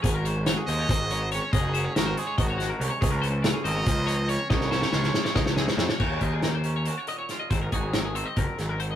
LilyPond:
<<
  \new Staff \with { instrumentName = "Trumpet" } { \time 7/8 \key des \major \tempo 4 = 141 r4. ees''4. des''8 | aes'4 bes'8 aes'8 ges'4 r8 | r4. ees''4. des''8 | des''2. r8 |
r2. r8 | r2. r8 | }
  \new Staff \with { instrumentName = "Clean electric guitar" } { \time 7/8 \key des \major aes'16 bes'16 c''8 des''16 aes'16 c''16 des''16 c''8 des''16 c''16 des''16 des''16 | ees''8 c''16 des''16 ees''16 c''8 des''16 ees''16 des''16 ges'16 bes'8 des''16 | aes'16 bes'16 c''8 des''16 aes'16 c''16 des''16 c''8 des''16 c''16 des''16 des''16 | ees''8 c''16 des''16 ees''16 c''8 des''16 ees''16 des''16 aes'16 c''8 des''16 |
des''8 ees''16 aes'16 bes'16 c''8 des''16 c''16 des''16 ees''16 des''8 ees''16 | c''16 bes'16 aes'8 bes'16 aes'16 c''16 ees''16 bes'8 aes'16 bes'16 c''16 ees''16 | }
  \new Staff \with { instrumentName = "Clean electric guitar" } { \time 7/8 \key des \major << { r8 des'8 ges'8 aes4 aes8 des'8 | r8 des'8 ges'8 aes4 aes8 des'8 | r8 des'8 f'8 c'4 c'8 des'8 | r8 des'8 f'8 aes4 aes8 des'8 |
ges'8 f'4 des'8 ges'4 f'8 | c'16 ees'16 ges'4 c'2 | } \\ { aes,2 ees4. | aes,2 ees4. | des2 f4. | des2 f4. |
ees4 bes4. bes,4 | aes,4 ees4 f,8 ges,8 aes,8 | } >> }
  \new Staff \with { instrumentName = "Picked electric bass" } { \clef bass \time 7/8 \key des \major aes,,4. ees,8 aes,,4. | ges,,4 aes,,8 r8 aes,,4 c,16 r16 | des,4. aes,,8 des,4. | c,4 des,8 r8 des,4 f,16 r16 |
ees,8 ees,2 r4 | aes,,8 aes,,4. ges,,16 r16 aes,,4 | }
  \new DrumStaff \with { instrumentName = "Drums" } \drummode { \time 7/8 <hh bd>8 hh8 <hh sn>8 hh8 <hh bd sn>8 hh8 hh8 | <hh bd>8 hh8 <hh sn>8 hh8 <hh bd>8 <hh sn>8 hh8 | <hh bd>8 hh8 <hh sn>8 hh8 <hh bd>8 hh8 hh8 | <bd sn>16 sn16 sn16 sn16 sn16 sn16 sn16 sn16 <bd sn>16 sn16 sn16 sn16 sn16 sn16 |
<cymc bd>8 <hh bd>8 <hh sn>8 hh8 hh8 hh8 <hh sn>8 | <hh bd>8 <hh bd>8 <hh sn>8 hh8 <hh bd>8 <hh sn>8 hh8 | }
>>